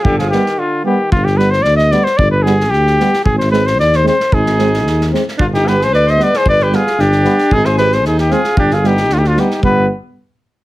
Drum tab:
SD |-ooo----|-ooooooo|--oooooo|-ooooooo|
BD |o-------|o-------|o-------|o-------|

SD |-ooooooo|-ooooooo|-ooooooo|-ooooooo|
BD |o-------|o-------|o-------|o-------|

SD |-ooooooo|--------|
BD |o-------|o-------|